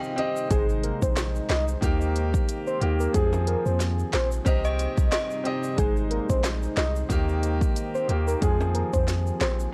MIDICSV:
0, 0, Header, 1, 7, 480
1, 0, Start_track
1, 0, Key_signature, -4, "major"
1, 0, Tempo, 659341
1, 369, Time_signature, 4, 2, 24, 8
1, 7089, End_track
2, 0, Start_track
2, 0, Title_t, "Synth bell"
2, 0, Program_c, 0, 98
2, 0, Note_on_c, 0, 79, 108
2, 237, Note_off_c, 0, 79, 0
2, 3248, Note_on_c, 0, 72, 97
2, 3373, Note_off_c, 0, 72, 0
2, 3384, Note_on_c, 0, 75, 105
2, 3718, Note_off_c, 0, 75, 0
2, 3727, Note_on_c, 0, 75, 94
2, 4076, Note_off_c, 0, 75, 0
2, 7089, End_track
3, 0, Start_track
3, 0, Title_t, "Soft synth lead"
3, 0, Program_c, 1, 80
3, 369, Note_on_c, 1, 68, 104
3, 483, Note_off_c, 1, 68, 0
3, 609, Note_on_c, 1, 70, 78
3, 724, Note_off_c, 1, 70, 0
3, 746, Note_on_c, 1, 72, 79
3, 835, Note_off_c, 1, 72, 0
3, 1091, Note_on_c, 1, 75, 82
3, 1205, Note_off_c, 1, 75, 0
3, 1944, Note_on_c, 1, 72, 81
3, 2034, Note_off_c, 1, 72, 0
3, 2184, Note_on_c, 1, 70, 75
3, 2274, Note_off_c, 1, 70, 0
3, 2289, Note_on_c, 1, 68, 104
3, 2403, Note_off_c, 1, 68, 0
3, 2529, Note_on_c, 1, 70, 78
3, 2643, Note_off_c, 1, 70, 0
3, 2664, Note_on_c, 1, 72, 83
3, 2753, Note_off_c, 1, 72, 0
3, 3010, Note_on_c, 1, 72, 89
3, 3124, Note_off_c, 1, 72, 0
3, 4209, Note_on_c, 1, 68, 101
3, 4324, Note_off_c, 1, 68, 0
3, 4448, Note_on_c, 1, 70, 76
3, 4563, Note_off_c, 1, 70, 0
3, 4584, Note_on_c, 1, 72, 81
3, 4673, Note_off_c, 1, 72, 0
3, 4930, Note_on_c, 1, 75, 82
3, 5044, Note_off_c, 1, 75, 0
3, 5785, Note_on_c, 1, 72, 79
3, 5874, Note_off_c, 1, 72, 0
3, 6023, Note_on_c, 1, 70, 77
3, 6113, Note_off_c, 1, 70, 0
3, 6129, Note_on_c, 1, 68, 105
3, 6243, Note_off_c, 1, 68, 0
3, 6368, Note_on_c, 1, 70, 83
3, 6483, Note_off_c, 1, 70, 0
3, 6503, Note_on_c, 1, 72, 80
3, 6593, Note_off_c, 1, 72, 0
3, 6850, Note_on_c, 1, 72, 85
3, 6964, Note_off_c, 1, 72, 0
3, 7089, End_track
4, 0, Start_track
4, 0, Title_t, "Grand piano"
4, 0, Program_c, 2, 0
4, 0, Control_c, 2, 64, 127
4, 0, Note_on_c, 2, 60, 100
4, 0, Note_on_c, 2, 67, 92
4, 0, Note_on_c, 2, 75, 109
4, 117, Note_off_c, 2, 60, 0
4, 117, Note_on_c, 2, 60, 94
4, 127, Note_off_c, 2, 67, 0
4, 127, Note_on_c, 2, 67, 85
4, 138, Note_off_c, 2, 75, 0
4, 138, Note_on_c, 2, 75, 102
4, 320, Note_off_c, 2, 60, 0
4, 326, Note_off_c, 2, 67, 0
4, 331, Note_off_c, 2, 75, 0
4, 356, Note_on_c, 2, 56, 77
4, 366, Note_on_c, 2, 63, 72
4, 376, Note_on_c, 2, 72, 86
4, 378, Control_c, 2, 64, 0
4, 503, Control_c, 2, 64, 127
4, 1134, Note_off_c, 2, 56, 0
4, 1140, Note_off_c, 2, 63, 0
4, 1145, Note_off_c, 2, 72, 0
4, 1316, Note_on_c, 2, 51, 100
4, 1326, Note_on_c, 2, 58, 90
4, 1337, Note_on_c, 2, 67, 113
4, 1338, Control_c, 2, 64, 0
4, 1447, Control_c, 2, 64, 127
4, 1910, Note_off_c, 2, 51, 0
4, 1915, Note_off_c, 2, 58, 0
4, 1920, Note_off_c, 2, 67, 0
4, 2037, Note_on_c, 2, 51, 79
4, 2047, Note_on_c, 2, 58, 71
4, 2058, Note_on_c, 2, 67, 89
4, 2240, Note_off_c, 2, 51, 0
4, 2246, Note_off_c, 2, 58, 0
4, 2251, Note_off_c, 2, 67, 0
4, 2277, Note_on_c, 2, 53, 79
4, 2287, Note_on_c, 2, 60, 73
4, 2298, Control_c, 2, 64, 0
4, 2298, Note_on_c, 2, 68, 87
4, 2434, Control_c, 2, 64, 127
4, 3055, Note_off_c, 2, 53, 0
4, 3060, Note_off_c, 2, 60, 0
4, 3066, Note_off_c, 2, 68, 0
4, 3238, Note_on_c, 2, 60, 103
4, 3248, Note_on_c, 2, 67, 93
4, 3258, Control_c, 2, 64, 0
4, 3258, Note_on_c, 2, 75, 115
4, 3387, Control_c, 2, 64, 127
4, 3831, Note_off_c, 2, 60, 0
4, 3836, Note_off_c, 2, 67, 0
4, 3841, Note_off_c, 2, 75, 0
4, 3958, Note_on_c, 2, 60, 89
4, 3968, Note_on_c, 2, 67, 84
4, 3978, Note_on_c, 2, 75, 107
4, 4161, Note_off_c, 2, 60, 0
4, 4166, Note_off_c, 2, 67, 0
4, 4171, Note_off_c, 2, 75, 0
4, 4197, Note_on_c, 2, 56, 77
4, 4207, Note_on_c, 2, 63, 73
4, 4218, Note_on_c, 2, 72, 86
4, 4219, Control_c, 2, 64, 0
4, 4330, Control_c, 2, 64, 127
4, 4975, Note_off_c, 2, 56, 0
4, 4980, Note_off_c, 2, 63, 0
4, 4985, Note_off_c, 2, 72, 0
4, 5160, Note_on_c, 2, 51, 103
4, 5169, Note_on_c, 2, 58, 94
4, 5179, Control_c, 2, 64, 0
4, 5180, Note_on_c, 2, 67, 113
4, 5309, Control_c, 2, 64, 127
4, 5752, Note_off_c, 2, 51, 0
4, 5757, Note_off_c, 2, 58, 0
4, 5762, Note_off_c, 2, 67, 0
4, 5879, Note_on_c, 2, 51, 76
4, 5889, Note_on_c, 2, 58, 72
4, 5900, Note_on_c, 2, 67, 89
4, 6081, Note_off_c, 2, 51, 0
4, 6087, Note_off_c, 2, 58, 0
4, 6092, Note_off_c, 2, 67, 0
4, 6119, Note_on_c, 2, 53, 81
4, 6130, Note_on_c, 2, 60, 68
4, 6137, Control_c, 2, 64, 0
4, 6140, Note_on_c, 2, 68, 86
4, 6246, Control_c, 2, 64, 127
4, 6896, Note_off_c, 2, 53, 0
4, 6902, Note_off_c, 2, 60, 0
4, 6906, Note_off_c, 2, 68, 0
4, 7089, End_track
5, 0, Start_track
5, 0, Title_t, "Ambient pad"
5, 0, Program_c, 3, 92
5, 0, Note_on_c, 3, 48, 83
5, 0, Note_on_c, 3, 55, 72
5, 0, Note_on_c, 3, 63, 90
5, 359, Note_off_c, 3, 48, 0
5, 360, Note_off_c, 3, 55, 0
5, 360, Note_off_c, 3, 63, 0
5, 370, Note_on_c, 3, 63, 75
5, 370, Note_on_c, 3, 72, 93
5, 371, Note_on_c, 3, 56, 83
5, 1320, Note_off_c, 3, 63, 0
5, 1320, Note_off_c, 3, 72, 0
5, 1321, Note_off_c, 3, 56, 0
5, 1327, Note_on_c, 3, 58, 70
5, 1328, Note_on_c, 3, 51, 83
5, 1328, Note_on_c, 3, 67, 85
5, 2278, Note_off_c, 3, 58, 0
5, 2279, Note_off_c, 3, 51, 0
5, 2279, Note_off_c, 3, 67, 0
5, 2287, Note_on_c, 3, 68, 92
5, 2289, Note_on_c, 3, 53, 83
5, 2289, Note_on_c, 3, 60, 77
5, 3239, Note_off_c, 3, 53, 0
5, 3239, Note_off_c, 3, 60, 0
5, 3239, Note_off_c, 3, 68, 0
5, 3248, Note_on_c, 3, 55, 75
5, 3250, Note_on_c, 3, 48, 80
5, 3250, Note_on_c, 3, 63, 88
5, 4199, Note_off_c, 3, 55, 0
5, 4200, Note_off_c, 3, 48, 0
5, 4211, Note_on_c, 3, 56, 87
5, 4211, Note_on_c, 3, 72, 93
5, 5150, Note_off_c, 3, 63, 0
5, 5160, Note_off_c, 3, 56, 0
5, 5160, Note_off_c, 3, 72, 0
5, 5171, Note_on_c, 3, 51, 81
5, 5171, Note_on_c, 3, 58, 72
5, 5171, Note_on_c, 3, 67, 88
5, 6120, Note_off_c, 3, 51, 0
5, 6120, Note_off_c, 3, 58, 0
5, 6121, Note_off_c, 3, 67, 0
5, 6130, Note_on_c, 3, 53, 79
5, 6130, Note_on_c, 3, 60, 73
5, 6131, Note_on_c, 3, 68, 92
5, 7080, Note_off_c, 3, 53, 0
5, 7080, Note_off_c, 3, 60, 0
5, 7080, Note_off_c, 3, 68, 0
5, 7089, End_track
6, 0, Start_track
6, 0, Title_t, "Sub bass"
6, 0, Program_c, 4, 38
6, 369, Note_on_c, 4, 32, 102
6, 670, Note_off_c, 4, 32, 0
6, 744, Note_on_c, 4, 34, 96
6, 1022, Note_off_c, 4, 34, 0
6, 1088, Note_on_c, 4, 36, 86
6, 1282, Note_off_c, 4, 36, 0
6, 1327, Note_on_c, 4, 39, 106
6, 1714, Note_off_c, 4, 39, 0
6, 2049, Note_on_c, 4, 39, 95
6, 2242, Note_off_c, 4, 39, 0
6, 2289, Note_on_c, 4, 41, 106
6, 2590, Note_off_c, 4, 41, 0
6, 2664, Note_on_c, 4, 41, 105
6, 2942, Note_off_c, 4, 41, 0
6, 3011, Note_on_c, 4, 34, 91
6, 3203, Note_off_c, 4, 34, 0
6, 3246, Note_on_c, 4, 36, 109
6, 3548, Note_off_c, 4, 36, 0
6, 3623, Note_on_c, 4, 36, 102
6, 3708, Note_off_c, 4, 36, 0
6, 4209, Note_on_c, 4, 32, 110
6, 4510, Note_off_c, 4, 32, 0
6, 4584, Note_on_c, 4, 34, 96
6, 4862, Note_off_c, 4, 34, 0
6, 4929, Note_on_c, 4, 36, 91
6, 5122, Note_off_c, 4, 36, 0
6, 5167, Note_on_c, 4, 39, 105
6, 5554, Note_off_c, 4, 39, 0
6, 5890, Note_on_c, 4, 39, 94
6, 6082, Note_off_c, 4, 39, 0
6, 6130, Note_on_c, 4, 41, 107
6, 6431, Note_off_c, 4, 41, 0
6, 6505, Note_on_c, 4, 41, 101
6, 6782, Note_off_c, 4, 41, 0
6, 6849, Note_on_c, 4, 34, 91
6, 7042, Note_off_c, 4, 34, 0
6, 7089, End_track
7, 0, Start_track
7, 0, Title_t, "Drums"
7, 24, Note_on_c, 9, 82, 44
7, 97, Note_off_c, 9, 82, 0
7, 130, Note_on_c, 9, 42, 53
7, 203, Note_off_c, 9, 42, 0
7, 264, Note_on_c, 9, 82, 88
7, 337, Note_off_c, 9, 82, 0
7, 368, Note_on_c, 9, 42, 77
7, 369, Note_on_c, 9, 36, 125
7, 370, Note_on_c, 9, 82, 69
7, 441, Note_off_c, 9, 42, 0
7, 442, Note_off_c, 9, 36, 0
7, 443, Note_off_c, 9, 82, 0
7, 503, Note_on_c, 9, 82, 48
7, 576, Note_off_c, 9, 82, 0
7, 608, Note_on_c, 9, 42, 59
7, 681, Note_off_c, 9, 42, 0
7, 744, Note_on_c, 9, 82, 81
7, 745, Note_on_c, 9, 36, 99
7, 817, Note_off_c, 9, 36, 0
7, 817, Note_off_c, 9, 82, 0
7, 849, Note_on_c, 9, 38, 123
7, 849, Note_on_c, 9, 82, 82
7, 851, Note_on_c, 9, 42, 80
7, 853, Note_on_c, 9, 39, 98
7, 921, Note_off_c, 9, 38, 0
7, 922, Note_off_c, 9, 82, 0
7, 924, Note_off_c, 9, 42, 0
7, 926, Note_off_c, 9, 39, 0
7, 985, Note_on_c, 9, 82, 49
7, 1058, Note_off_c, 9, 82, 0
7, 1089, Note_on_c, 9, 42, 48
7, 1090, Note_on_c, 9, 38, 116
7, 1095, Note_on_c, 9, 39, 90
7, 1161, Note_off_c, 9, 42, 0
7, 1163, Note_off_c, 9, 38, 0
7, 1168, Note_off_c, 9, 39, 0
7, 1223, Note_on_c, 9, 82, 76
7, 1296, Note_off_c, 9, 82, 0
7, 1327, Note_on_c, 9, 36, 105
7, 1330, Note_on_c, 9, 42, 76
7, 1330, Note_on_c, 9, 82, 80
7, 1400, Note_off_c, 9, 36, 0
7, 1403, Note_off_c, 9, 42, 0
7, 1403, Note_off_c, 9, 82, 0
7, 1464, Note_on_c, 9, 82, 50
7, 1537, Note_off_c, 9, 82, 0
7, 1570, Note_on_c, 9, 42, 54
7, 1570, Note_on_c, 9, 82, 51
7, 1642, Note_off_c, 9, 82, 0
7, 1643, Note_off_c, 9, 42, 0
7, 1702, Note_on_c, 9, 36, 98
7, 1705, Note_on_c, 9, 82, 73
7, 1775, Note_off_c, 9, 36, 0
7, 1777, Note_off_c, 9, 82, 0
7, 1808, Note_on_c, 9, 82, 76
7, 1810, Note_on_c, 9, 42, 75
7, 1881, Note_off_c, 9, 82, 0
7, 1883, Note_off_c, 9, 42, 0
7, 1944, Note_on_c, 9, 82, 45
7, 2016, Note_off_c, 9, 82, 0
7, 2049, Note_on_c, 9, 42, 55
7, 2122, Note_off_c, 9, 42, 0
7, 2184, Note_on_c, 9, 82, 91
7, 2256, Note_off_c, 9, 82, 0
7, 2288, Note_on_c, 9, 42, 78
7, 2289, Note_on_c, 9, 36, 119
7, 2292, Note_on_c, 9, 82, 73
7, 2361, Note_off_c, 9, 42, 0
7, 2362, Note_off_c, 9, 36, 0
7, 2364, Note_off_c, 9, 82, 0
7, 2423, Note_on_c, 9, 65, 66
7, 2423, Note_on_c, 9, 82, 49
7, 2495, Note_off_c, 9, 65, 0
7, 2495, Note_off_c, 9, 82, 0
7, 2527, Note_on_c, 9, 42, 59
7, 2600, Note_off_c, 9, 42, 0
7, 2663, Note_on_c, 9, 82, 76
7, 2736, Note_off_c, 9, 82, 0
7, 2768, Note_on_c, 9, 38, 73
7, 2768, Note_on_c, 9, 82, 82
7, 2770, Note_on_c, 9, 42, 84
7, 2841, Note_off_c, 9, 38, 0
7, 2841, Note_off_c, 9, 82, 0
7, 2843, Note_off_c, 9, 42, 0
7, 2904, Note_on_c, 9, 82, 49
7, 2977, Note_off_c, 9, 82, 0
7, 3007, Note_on_c, 9, 42, 49
7, 3009, Note_on_c, 9, 38, 114
7, 3013, Note_on_c, 9, 39, 88
7, 3080, Note_off_c, 9, 42, 0
7, 3082, Note_off_c, 9, 38, 0
7, 3086, Note_off_c, 9, 39, 0
7, 3142, Note_on_c, 9, 82, 78
7, 3214, Note_off_c, 9, 82, 0
7, 3247, Note_on_c, 9, 36, 106
7, 3248, Note_on_c, 9, 82, 78
7, 3250, Note_on_c, 9, 42, 80
7, 3319, Note_off_c, 9, 36, 0
7, 3321, Note_off_c, 9, 82, 0
7, 3322, Note_off_c, 9, 42, 0
7, 3382, Note_on_c, 9, 82, 51
7, 3455, Note_off_c, 9, 82, 0
7, 3487, Note_on_c, 9, 82, 49
7, 3489, Note_on_c, 9, 42, 55
7, 3560, Note_off_c, 9, 82, 0
7, 3562, Note_off_c, 9, 42, 0
7, 3622, Note_on_c, 9, 36, 97
7, 3622, Note_on_c, 9, 82, 76
7, 3695, Note_off_c, 9, 36, 0
7, 3695, Note_off_c, 9, 82, 0
7, 3727, Note_on_c, 9, 82, 76
7, 3728, Note_on_c, 9, 38, 127
7, 3731, Note_on_c, 9, 42, 75
7, 3733, Note_on_c, 9, 39, 111
7, 3800, Note_off_c, 9, 82, 0
7, 3801, Note_off_c, 9, 38, 0
7, 3804, Note_off_c, 9, 42, 0
7, 3806, Note_off_c, 9, 39, 0
7, 3861, Note_on_c, 9, 82, 45
7, 3934, Note_off_c, 9, 82, 0
7, 3970, Note_on_c, 9, 42, 52
7, 4043, Note_off_c, 9, 42, 0
7, 4102, Note_on_c, 9, 82, 90
7, 4174, Note_off_c, 9, 82, 0
7, 4209, Note_on_c, 9, 36, 124
7, 4209, Note_on_c, 9, 42, 78
7, 4209, Note_on_c, 9, 82, 68
7, 4281, Note_off_c, 9, 42, 0
7, 4282, Note_off_c, 9, 36, 0
7, 4282, Note_off_c, 9, 82, 0
7, 4342, Note_on_c, 9, 82, 48
7, 4415, Note_off_c, 9, 82, 0
7, 4447, Note_on_c, 9, 42, 64
7, 4520, Note_off_c, 9, 42, 0
7, 4584, Note_on_c, 9, 36, 94
7, 4584, Note_on_c, 9, 82, 78
7, 4657, Note_off_c, 9, 36, 0
7, 4657, Note_off_c, 9, 82, 0
7, 4688, Note_on_c, 9, 38, 126
7, 4690, Note_on_c, 9, 82, 82
7, 4691, Note_on_c, 9, 42, 83
7, 4693, Note_on_c, 9, 39, 98
7, 4761, Note_off_c, 9, 38, 0
7, 4763, Note_off_c, 9, 42, 0
7, 4763, Note_off_c, 9, 82, 0
7, 4765, Note_off_c, 9, 39, 0
7, 4825, Note_on_c, 9, 82, 50
7, 4898, Note_off_c, 9, 82, 0
7, 4928, Note_on_c, 9, 42, 48
7, 4929, Note_on_c, 9, 38, 110
7, 4934, Note_on_c, 9, 39, 89
7, 5001, Note_off_c, 9, 42, 0
7, 5002, Note_off_c, 9, 38, 0
7, 5007, Note_off_c, 9, 39, 0
7, 5064, Note_on_c, 9, 82, 81
7, 5137, Note_off_c, 9, 82, 0
7, 5167, Note_on_c, 9, 36, 101
7, 5170, Note_on_c, 9, 42, 75
7, 5171, Note_on_c, 9, 82, 76
7, 5240, Note_off_c, 9, 36, 0
7, 5243, Note_off_c, 9, 42, 0
7, 5244, Note_off_c, 9, 82, 0
7, 5305, Note_on_c, 9, 82, 48
7, 5378, Note_off_c, 9, 82, 0
7, 5410, Note_on_c, 9, 42, 55
7, 5411, Note_on_c, 9, 82, 50
7, 5483, Note_off_c, 9, 42, 0
7, 5484, Note_off_c, 9, 82, 0
7, 5543, Note_on_c, 9, 36, 97
7, 5546, Note_on_c, 9, 82, 74
7, 5615, Note_off_c, 9, 36, 0
7, 5619, Note_off_c, 9, 82, 0
7, 5651, Note_on_c, 9, 42, 73
7, 5652, Note_on_c, 9, 82, 73
7, 5724, Note_off_c, 9, 42, 0
7, 5725, Note_off_c, 9, 82, 0
7, 5786, Note_on_c, 9, 82, 46
7, 5859, Note_off_c, 9, 82, 0
7, 5890, Note_on_c, 9, 42, 54
7, 5963, Note_off_c, 9, 42, 0
7, 6026, Note_on_c, 9, 82, 90
7, 6099, Note_off_c, 9, 82, 0
7, 6129, Note_on_c, 9, 42, 78
7, 6130, Note_on_c, 9, 36, 127
7, 6133, Note_on_c, 9, 82, 70
7, 6202, Note_off_c, 9, 42, 0
7, 6203, Note_off_c, 9, 36, 0
7, 6206, Note_off_c, 9, 82, 0
7, 6265, Note_on_c, 9, 65, 70
7, 6265, Note_on_c, 9, 82, 49
7, 6338, Note_off_c, 9, 65, 0
7, 6338, Note_off_c, 9, 82, 0
7, 6368, Note_on_c, 9, 42, 60
7, 6441, Note_off_c, 9, 42, 0
7, 6504, Note_on_c, 9, 82, 80
7, 6505, Note_on_c, 9, 36, 91
7, 6577, Note_off_c, 9, 82, 0
7, 6578, Note_off_c, 9, 36, 0
7, 6610, Note_on_c, 9, 38, 71
7, 6611, Note_on_c, 9, 82, 84
7, 6612, Note_on_c, 9, 42, 82
7, 6682, Note_off_c, 9, 38, 0
7, 6683, Note_off_c, 9, 82, 0
7, 6685, Note_off_c, 9, 42, 0
7, 6746, Note_on_c, 9, 82, 50
7, 6819, Note_off_c, 9, 82, 0
7, 6849, Note_on_c, 9, 42, 49
7, 6851, Note_on_c, 9, 38, 109
7, 6855, Note_on_c, 9, 39, 86
7, 6922, Note_off_c, 9, 42, 0
7, 6923, Note_off_c, 9, 38, 0
7, 6928, Note_off_c, 9, 39, 0
7, 6985, Note_on_c, 9, 82, 79
7, 7057, Note_off_c, 9, 82, 0
7, 7089, End_track
0, 0, End_of_file